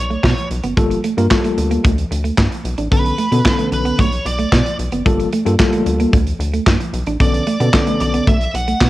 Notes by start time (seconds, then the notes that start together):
Already playing: B1
0.00 C#5
0.11 A3, closed hi-hat
0.24 B2 B3, kick, snare, clap
0.37 muted clean electric guitar stroke, closed hi-hat
0.51 B1, closed hi-hat
0.64 F#1 B3, closed hi-hat
0.77 G1 G3 A#3 F4 A4, kick, closed hi-hat
0.91 muted clean electric guitar stroke, closed hi-hat
1.04 A3, closed hi-hat
1.17 G2 G3 A#3 F4 A#4, closed hi-hat
1.31 G3 A#3 F4 A4, kick, snare, clap
1.44 A3, closed hi-hat
1.58 D2, muted clean electric guitar stroke, closed hi-hat
1.71 A#3, closed hi-hat
1.84 D2 A3, kick, closed hi-hat
1.98 closed hi-hat
2.11 D2, muted clean electric guitar stroke, closed hi-hat
2.24 A3, closed hi-hat
2.37 G2 A#3, kick, snare, clap
2.51 muted clean electric guitar stroke, closed hi-hat
2.65 B1, closed hi-hat
2.78 A1 D4, closed hi-hat
2.91 B1 D3 B3 C#4 A4 B4, kick, closed hi-hat
3.05 muted clean electric guitar stroke, closed hi-hat
3.18 A3, closed hi-hat
3.31 B2 D3 B3 C#4 A4, closed hi-hat
3.44 D3 B3 C#4 A4, kick, snare, clap
3.58 A3, closed hi-hat
3.72 B1 B4, muted clean electric guitar stroke, closed hi-hat
3.85 B3, closed hi-hat
3.99 B1 A3 C#5, kick, closed hi-hat
4.12 closed hi-hat
4.25 B1 D5, muted clean electric guitar stroke, closed hi-hat
4.39 A3, closed hi-hat
4.52 B2 B3, kick, snare, clap
4.66 muted clean electric guitar stroke, closed hi-hat
4.79 B1, closed hi-hat
4.92 F#1 B3, closed hi-hat
5.05 G1 G3 A#3 F4 A4, kick, closed hi-hat
5.20 muted clean electric guitar stroke, closed hi-hat
5.32 A3, closed hi-hat
5.45 G2 G3 A#3 F4 A4, closed hi-hat
5.59 G3 A3 F4 A4, kick, snare, clap
5.66 A#3
5.73 A3, closed hi-hat
5.86 D2, muted clean electric guitar stroke, closed hi-hat
6.00 A#3, closed hi-hat
6.13 D2 A3, kick, closed hi-hat
6.27 closed hi-hat
6.39 D2, muted clean electric guitar stroke, closed hi-hat
6.54 A3, closed hi-hat
6.67 G2 A#3, kick, snare, clap
6.80 muted clean electric guitar stroke, closed hi-hat
6.93 B1, closed hi-hat
7.07 A1 D4, closed hi-hat
7.20 B1 D3 B3 C#4 A4 D5, kick, closed hi-hat
7.34 muted clean electric guitar stroke, closed hi-hat
7.47 A3, closed hi-hat
7.60 B2 D3 B3 C#4 A4, closed hi-hat
7.73 D3 B3 C#4 A4, kick, snare, clap
7.87 A3, closed hi-hat
8.00 B1 D5, muted clean electric guitar stroke, closed hi-hat
8.14 B3, closed hi-hat
8.27 B1 A3 E5, kick, closed hi-hat
8.41 closed hi-hat
8.54 B1 F#5, muted clean electric guitar stroke, closed hi-hat
8.68 A3, closed hi-hat
8.81 B2 B3, kick, snare, clap